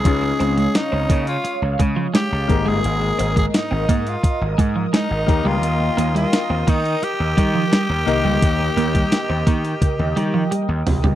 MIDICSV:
0, 0, Header, 1, 8, 480
1, 0, Start_track
1, 0, Tempo, 697674
1, 36, Time_signature, 4, 2, 24, 8
1, 7672, End_track
2, 0, Start_track
2, 0, Title_t, "Analog synth pad"
2, 0, Program_c, 0, 89
2, 32, Note_on_c, 0, 87, 80
2, 34, Note_on_c, 0, 73, 81
2, 36, Note_on_c, 0, 77, 70
2, 1698, Note_off_c, 0, 73, 0
2, 1699, Note_off_c, 0, 77, 0
2, 1715, Note_on_c, 0, 70, 82
2, 1716, Note_on_c, 0, 75, 75
2, 3635, Note_on_c, 0, 79, 72
2, 7672, Note_off_c, 0, 70, 0
2, 7672, Note_off_c, 0, 75, 0
2, 7672, Note_off_c, 0, 79, 0
2, 7672, Note_off_c, 0, 87, 0
2, 7672, End_track
3, 0, Start_track
3, 0, Title_t, "Tenor saxophone"
3, 0, Program_c, 1, 66
3, 0, Note_on_c, 1, 68, 102
3, 399, Note_off_c, 1, 68, 0
3, 404, Note_on_c, 1, 68, 98
3, 523, Note_on_c, 1, 63, 98
3, 533, Note_off_c, 1, 68, 0
3, 877, Note_off_c, 1, 63, 0
3, 881, Note_on_c, 1, 65, 90
3, 1102, Note_off_c, 1, 65, 0
3, 1481, Note_on_c, 1, 67, 100
3, 1848, Note_on_c, 1, 68, 105
3, 1858, Note_off_c, 1, 67, 0
3, 2322, Note_off_c, 1, 68, 0
3, 2330, Note_on_c, 1, 68, 85
3, 2381, Note_off_c, 1, 68, 0
3, 2452, Note_on_c, 1, 63, 85
3, 2811, Note_on_c, 1, 65, 76
3, 2821, Note_off_c, 1, 63, 0
3, 3043, Note_off_c, 1, 65, 0
3, 3408, Note_on_c, 1, 63, 86
3, 3764, Note_on_c, 1, 65, 99
3, 3775, Note_off_c, 1, 63, 0
3, 4238, Note_off_c, 1, 65, 0
3, 4242, Note_on_c, 1, 65, 95
3, 4606, Note_on_c, 1, 63, 89
3, 4616, Note_off_c, 1, 65, 0
3, 4843, Note_on_c, 1, 67, 105
3, 4853, Note_off_c, 1, 63, 0
3, 7239, Note_off_c, 1, 67, 0
3, 7672, End_track
4, 0, Start_track
4, 0, Title_t, "Grand piano"
4, 0, Program_c, 2, 0
4, 28, Note_on_c, 2, 61, 60
4, 32, Note_on_c, 2, 63, 55
4, 35, Note_on_c, 2, 49, 58
4, 38, Note_on_c, 2, 65, 58
4, 45, Note_on_c, 2, 56, 72
4, 144, Control_c, 2, 64, 127
4, 728, Note_off_c, 2, 49, 0
4, 1684, Note_off_c, 2, 61, 0
4, 1686, Note_off_c, 2, 63, 0
4, 1690, Note_off_c, 2, 65, 0
4, 1693, Note_off_c, 2, 56, 0
4, 1705, Note_on_c, 2, 58, 69
4, 1710, Note_on_c, 2, 63, 59
4, 1712, Note_on_c, 2, 44, 61
4, 1715, Note_on_c, 2, 68, 60
4, 1720, Note_on_c, 2, 70, 72
4, 1725, Control_c, 2, 64, 0
4, 1853, Control_c, 2, 64, 127
4, 2406, Note_off_c, 2, 44, 0
4, 3603, Note_off_c, 2, 58, 0
4, 3605, Note_off_c, 2, 63, 0
4, 3608, Note_off_c, 2, 68, 0
4, 3610, Note_off_c, 2, 70, 0
4, 3622, Note_on_c, 2, 58, 65
4, 3627, Note_on_c, 2, 63, 60
4, 3630, Note_on_c, 2, 51, 65
4, 3633, Note_on_c, 2, 67, 60
4, 3639, Note_on_c, 2, 70, 74
4, 3645, Control_c, 2, 64, 0
4, 3768, Control_c, 2, 64, 127
4, 4326, Note_off_c, 2, 51, 0
4, 5521, Note_off_c, 2, 58, 0
4, 5524, Note_off_c, 2, 63, 0
4, 5527, Note_off_c, 2, 67, 0
4, 5530, Note_off_c, 2, 70, 0
4, 5546, Note_on_c, 2, 58, 79
4, 5552, Note_on_c, 2, 63, 72
4, 5553, Note_on_c, 2, 51, 77
4, 5557, Note_on_c, 2, 67, 73
4, 5561, Note_on_c, 2, 70, 93
4, 6247, Note_off_c, 2, 51, 0
4, 7443, Note_off_c, 2, 58, 0
4, 7446, Note_off_c, 2, 63, 0
4, 7449, Note_off_c, 2, 67, 0
4, 7451, Note_off_c, 2, 70, 0
4, 7672, End_track
5, 0, Start_track
5, 0, Title_t, "Clean electric guitar"
5, 0, Program_c, 3, 27
5, 273, Note_on_c, 3, 60, 71
5, 376, Note_off_c, 3, 60, 0
5, 395, Note_on_c, 3, 56, 61
5, 497, Note_off_c, 3, 56, 0
5, 634, Note_on_c, 3, 60, 67
5, 736, Note_off_c, 3, 60, 0
5, 753, Note_on_c, 3, 58, 77
5, 856, Note_off_c, 3, 58, 0
5, 1234, Note_on_c, 3, 56, 71
5, 1336, Note_off_c, 3, 56, 0
5, 1351, Note_on_c, 3, 53, 74
5, 1455, Note_off_c, 3, 53, 0
5, 1470, Note_on_c, 3, 56, 81
5, 1574, Note_off_c, 3, 56, 0
5, 1828, Note_on_c, 3, 56, 75
5, 1933, Note_off_c, 3, 56, 0
5, 2192, Note_on_c, 3, 60, 74
5, 2295, Note_off_c, 3, 60, 0
5, 2312, Note_on_c, 3, 56, 63
5, 2415, Note_off_c, 3, 56, 0
5, 2553, Note_on_c, 3, 60, 69
5, 2656, Note_off_c, 3, 60, 0
5, 2675, Note_on_c, 3, 58, 77
5, 2777, Note_off_c, 3, 58, 0
5, 3152, Note_on_c, 3, 56, 74
5, 3255, Note_off_c, 3, 56, 0
5, 3273, Note_on_c, 3, 53, 70
5, 3376, Note_off_c, 3, 53, 0
5, 3392, Note_on_c, 3, 56, 80
5, 3495, Note_off_c, 3, 56, 0
5, 3750, Note_on_c, 3, 55, 74
5, 3854, Note_off_c, 3, 55, 0
5, 4109, Note_on_c, 3, 58, 75
5, 4214, Note_off_c, 3, 58, 0
5, 4231, Note_on_c, 3, 55, 67
5, 4334, Note_off_c, 3, 55, 0
5, 4473, Note_on_c, 3, 60, 69
5, 4576, Note_off_c, 3, 60, 0
5, 4591, Note_on_c, 3, 58, 84
5, 4695, Note_off_c, 3, 58, 0
5, 5072, Note_on_c, 3, 55, 78
5, 5175, Note_off_c, 3, 55, 0
5, 5192, Note_on_c, 3, 53, 77
5, 5295, Note_off_c, 3, 53, 0
5, 5311, Note_on_c, 3, 55, 85
5, 5415, Note_off_c, 3, 55, 0
5, 5675, Note_on_c, 3, 55, 73
5, 5777, Note_off_c, 3, 55, 0
5, 6034, Note_on_c, 3, 58, 77
5, 6137, Note_off_c, 3, 58, 0
5, 6154, Note_on_c, 3, 55, 64
5, 6256, Note_off_c, 3, 55, 0
5, 6394, Note_on_c, 3, 60, 67
5, 6496, Note_off_c, 3, 60, 0
5, 6514, Note_on_c, 3, 58, 85
5, 6616, Note_off_c, 3, 58, 0
5, 6993, Note_on_c, 3, 55, 71
5, 7096, Note_off_c, 3, 55, 0
5, 7114, Note_on_c, 3, 53, 77
5, 7216, Note_off_c, 3, 53, 0
5, 7234, Note_on_c, 3, 55, 88
5, 7336, Note_off_c, 3, 55, 0
5, 7594, Note_on_c, 3, 55, 72
5, 7672, Note_off_c, 3, 55, 0
5, 7672, End_track
6, 0, Start_track
6, 0, Title_t, "Slap bass"
6, 0, Program_c, 4, 36
6, 36, Note_on_c, 4, 37, 103
6, 216, Note_off_c, 4, 37, 0
6, 275, Note_on_c, 4, 37, 88
6, 455, Note_off_c, 4, 37, 0
6, 636, Note_on_c, 4, 37, 88
6, 726, Note_off_c, 4, 37, 0
6, 754, Note_on_c, 4, 49, 95
6, 935, Note_off_c, 4, 49, 0
6, 1114, Note_on_c, 4, 37, 89
6, 1205, Note_off_c, 4, 37, 0
6, 1237, Note_on_c, 4, 49, 99
6, 1416, Note_off_c, 4, 49, 0
6, 1598, Note_on_c, 4, 37, 78
6, 1687, Note_off_c, 4, 37, 0
6, 1716, Note_on_c, 4, 32, 80
6, 1806, Note_off_c, 4, 32, 0
6, 1838, Note_on_c, 4, 31, 88
6, 1927, Note_off_c, 4, 31, 0
6, 1960, Note_on_c, 4, 32, 94
6, 2138, Note_off_c, 4, 32, 0
6, 2198, Note_on_c, 4, 32, 97
6, 2377, Note_off_c, 4, 32, 0
6, 2557, Note_on_c, 4, 32, 81
6, 2646, Note_off_c, 4, 32, 0
6, 2676, Note_on_c, 4, 44, 87
6, 2856, Note_off_c, 4, 44, 0
6, 3036, Note_on_c, 4, 32, 98
6, 3126, Note_off_c, 4, 32, 0
6, 3157, Note_on_c, 4, 44, 97
6, 3336, Note_off_c, 4, 44, 0
6, 3513, Note_on_c, 4, 32, 80
6, 3604, Note_off_c, 4, 32, 0
6, 3636, Note_on_c, 4, 39, 92
6, 3726, Note_off_c, 4, 39, 0
6, 3753, Note_on_c, 4, 37, 81
6, 3844, Note_off_c, 4, 37, 0
6, 3869, Note_on_c, 4, 39, 106
6, 4052, Note_off_c, 4, 39, 0
6, 4111, Note_on_c, 4, 39, 106
6, 4293, Note_off_c, 4, 39, 0
6, 4470, Note_on_c, 4, 39, 87
6, 4562, Note_off_c, 4, 39, 0
6, 4594, Note_on_c, 4, 51, 94
6, 4775, Note_off_c, 4, 51, 0
6, 4953, Note_on_c, 4, 39, 87
6, 5044, Note_off_c, 4, 39, 0
6, 5075, Note_on_c, 4, 51, 96
6, 5255, Note_off_c, 4, 51, 0
6, 5431, Note_on_c, 4, 39, 86
6, 5523, Note_off_c, 4, 39, 0
6, 5550, Note_on_c, 4, 36, 80
6, 5642, Note_off_c, 4, 36, 0
6, 5673, Note_on_c, 4, 37, 85
6, 5764, Note_off_c, 4, 37, 0
6, 5796, Note_on_c, 4, 39, 97
6, 5976, Note_off_c, 4, 39, 0
6, 6031, Note_on_c, 4, 39, 98
6, 6213, Note_off_c, 4, 39, 0
6, 6395, Note_on_c, 4, 39, 86
6, 6485, Note_off_c, 4, 39, 0
6, 6514, Note_on_c, 4, 51, 93
6, 6695, Note_off_c, 4, 51, 0
6, 6875, Note_on_c, 4, 39, 98
6, 6965, Note_off_c, 4, 39, 0
6, 6994, Note_on_c, 4, 51, 109
6, 7174, Note_off_c, 4, 51, 0
6, 7352, Note_on_c, 4, 39, 87
6, 7443, Note_off_c, 4, 39, 0
6, 7473, Note_on_c, 4, 36, 87
6, 7564, Note_off_c, 4, 36, 0
6, 7597, Note_on_c, 4, 37, 92
6, 7672, Note_off_c, 4, 37, 0
6, 7672, End_track
7, 0, Start_track
7, 0, Title_t, "Muted clean electric guitar strokes"
7, 155, Note_on_c, 9, 29, 44
7, 224, Note_off_c, 9, 29, 0
7, 517, Note_on_c, 9, 29, 41
7, 586, Note_off_c, 9, 29, 0
7, 992, Note_on_c, 9, 29, 41
7, 1061, Note_off_c, 9, 29, 0
7, 1589, Note_on_c, 9, 29, 40
7, 1658, Note_off_c, 9, 29, 0
7, 2073, Note_on_c, 9, 29, 41
7, 2141, Note_off_c, 9, 29, 0
7, 2434, Note_on_c, 9, 29, 41
7, 2503, Note_off_c, 9, 29, 0
7, 2913, Note_on_c, 9, 29, 44
7, 2982, Note_off_c, 9, 29, 0
7, 3509, Note_on_c, 9, 29, 45
7, 3578, Note_off_c, 9, 29, 0
7, 3992, Note_on_c, 9, 29, 45
7, 4060, Note_off_c, 9, 29, 0
7, 4352, Note_on_c, 9, 29, 41
7, 4420, Note_off_c, 9, 29, 0
7, 4832, Note_on_c, 9, 29, 46
7, 4901, Note_off_c, 9, 29, 0
7, 5432, Note_on_c, 9, 29, 44
7, 5501, Note_off_c, 9, 29, 0
7, 5915, Note_on_c, 9, 29, 45
7, 5983, Note_off_c, 9, 29, 0
7, 6275, Note_on_c, 9, 29, 45
7, 6344, Note_off_c, 9, 29, 0
7, 6756, Note_on_c, 9, 29, 47
7, 6824, Note_off_c, 9, 29, 0
7, 7356, Note_on_c, 9, 29, 44
7, 7424, Note_off_c, 9, 29, 0
7, 7672, End_track
8, 0, Start_track
8, 0, Title_t, "Drums"
8, 35, Note_on_c, 9, 42, 88
8, 36, Note_on_c, 9, 36, 107
8, 104, Note_off_c, 9, 42, 0
8, 105, Note_off_c, 9, 36, 0
8, 278, Note_on_c, 9, 42, 74
8, 346, Note_off_c, 9, 42, 0
8, 396, Note_on_c, 9, 42, 49
8, 465, Note_off_c, 9, 42, 0
8, 515, Note_on_c, 9, 42, 88
8, 517, Note_on_c, 9, 38, 90
8, 584, Note_off_c, 9, 42, 0
8, 586, Note_off_c, 9, 38, 0
8, 755, Note_on_c, 9, 36, 84
8, 755, Note_on_c, 9, 42, 76
8, 823, Note_off_c, 9, 36, 0
8, 824, Note_off_c, 9, 42, 0
8, 875, Note_on_c, 9, 42, 49
8, 944, Note_off_c, 9, 42, 0
8, 995, Note_on_c, 9, 42, 82
8, 1064, Note_off_c, 9, 42, 0
8, 1236, Note_on_c, 9, 36, 82
8, 1236, Note_on_c, 9, 42, 67
8, 1304, Note_off_c, 9, 36, 0
8, 1304, Note_off_c, 9, 42, 0
8, 1477, Note_on_c, 9, 42, 83
8, 1478, Note_on_c, 9, 38, 104
8, 1546, Note_off_c, 9, 42, 0
8, 1547, Note_off_c, 9, 38, 0
8, 1716, Note_on_c, 9, 36, 93
8, 1717, Note_on_c, 9, 42, 52
8, 1784, Note_off_c, 9, 36, 0
8, 1786, Note_off_c, 9, 42, 0
8, 1956, Note_on_c, 9, 42, 90
8, 2025, Note_off_c, 9, 42, 0
8, 2197, Note_on_c, 9, 42, 76
8, 2266, Note_off_c, 9, 42, 0
8, 2316, Note_on_c, 9, 36, 80
8, 2319, Note_on_c, 9, 42, 48
8, 2385, Note_off_c, 9, 36, 0
8, 2388, Note_off_c, 9, 42, 0
8, 2437, Note_on_c, 9, 42, 87
8, 2439, Note_on_c, 9, 38, 96
8, 2506, Note_off_c, 9, 42, 0
8, 2507, Note_off_c, 9, 38, 0
8, 2675, Note_on_c, 9, 36, 82
8, 2678, Note_on_c, 9, 42, 75
8, 2744, Note_off_c, 9, 36, 0
8, 2746, Note_off_c, 9, 42, 0
8, 2798, Note_on_c, 9, 42, 46
8, 2867, Note_off_c, 9, 42, 0
8, 2914, Note_on_c, 9, 36, 93
8, 2918, Note_on_c, 9, 42, 91
8, 2983, Note_off_c, 9, 36, 0
8, 2986, Note_off_c, 9, 42, 0
8, 3155, Note_on_c, 9, 36, 83
8, 3158, Note_on_c, 9, 42, 68
8, 3224, Note_off_c, 9, 36, 0
8, 3226, Note_off_c, 9, 42, 0
8, 3397, Note_on_c, 9, 42, 81
8, 3398, Note_on_c, 9, 38, 101
8, 3466, Note_off_c, 9, 38, 0
8, 3466, Note_off_c, 9, 42, 0
8, 3634, Note_on_c, 9, 36, 92
8, 3638, Note_on_c, 9, 42, 54
8, 3703, Note_off_c, 9, 36, 0
8, 3707, Note_off_c, 9, 42, 0
8, 3875, Note_on_c, 9, 42, 91
8, 3943, Note_off_c, 9, 42, 0
8, 4117, Note_on_c, 9, 42, 73
8, 4186, Note_off_c, 9, 42, 0
8, 4238, Note_on_c, 9, 42, 51
8, 4307, Note_off_c, 9, 42, 0
8, 4355, Note_on_c, 9, 42, 87
8, 4357, Note_on_c, 9, 38, 97
8, 4424, Note_off_c, 9, 42, 0
8, 4425, Note_off_c, 9, 38, 0
8, 4593, Note_on_c, 9, 36, 88
8, 4594, Note_on_c, 9, 42, 76
8, 4662, Note_off_c, 9, 36, 0
8, 4663, Note_off_c, 9, 42, 0
8, 4716, Note_on_c, 9, 42, 47
8, 4785, Note_off_c, 9, 42, 0
8, 4836, Note_on_c, 9, 42, 90
8, 4904, Note_off_c, 9, 42, 0
8, 5075, Note_on_c, 9, 36, 82
8, 5076, Note_on_c, 9, 42, 64
8, 5144, Note_off_c, 9, 36, 0
8, 5145, Note_off_c, 9, 42, 0
8, 5316, Note_on_c, 9, 42, 84
8, 5317, Note_on_c, 9, 38, 102
8, 5385, Note_off_c, 9, 42, 0
8, 5386, Note_off_c, 9, 38, 0
8, 5557, Note_on_c, 9, 42, 58
8, 5626, Note_off_c, 9, 42, 0
8, 5796, Note_on_c, 9, 36, 102
8, 5796, Note_on_c, 9, 42, 93
8, 5864, Note_off_c, 9, 36, 0
8, 5865, Note_off_c, 9, 42, 0
8, 6037, Note_on_c, 9, 42, 74
8, 6106, Note_off_c, 9, 42, 0
8, 6156, Note_on_c, 9, 36, 76
8, 6156, Note_on_c, 9, 42, 52
8, 6225, Note_off_c, 9, 36, 0
8, 6225, Note_off_c, 9, 42, 0
8, 6274, Note_on_c, 9, 42, 97
8, 6276, Note_on_c, 9, 38, 93
8, 6343, Note_off_c, 9, 42, 0
8, 6345, Note_off_c, 9, 38, 0
8, 6514, Note_on_c, 9, 36, 85
8, 6515, Note_on_c, 9, 42, 77
8, 6583, Note_off_c, 9, 36, 0
8, 6584, Note_off_c, 9, 42, 0
8, 6637, Note_on_c, 9, 42, 51
8, 6705, Note_off_c, 9, 42, 0
8, 6754, Note_on_c, 9, 36, 98
8, 6755, Note_on_c, 9, 42, 89
8, 6755, Note_on_c, 9, 48, 60
8, 6823, Note_off_c, 9, 36, 0
8, 6824, Note_off_c, 9, 42, 0
8, 6824, Note_off_c, 9, 48, 0
8, 6877, Note_on_c, 9, 48, 51
8, 6945, Note_off_c, 9, 48, 0
8, 6996, Note_on_c, 9, 42, 65
8, 7065, Note_off_c, 9, 42, 0
8, 7237, Note_on_c, 9, 42, 87
8, 7306, Note_off_c, 9, 42, 0
8, 7476, Note_on_c, 9, 43, 94
8, 7477, Note_on_c, 9, 46, 57
8, 7545, Note_off_c, 9, 43, 0
8, 7546, Note_off_c, 9, 46, 0
8, 7595, Note_on_c, 9, 43, 83
8, 7664, Note_off_c, 9, 43, 0
8, 7672, End_track
0, 0, End_of_file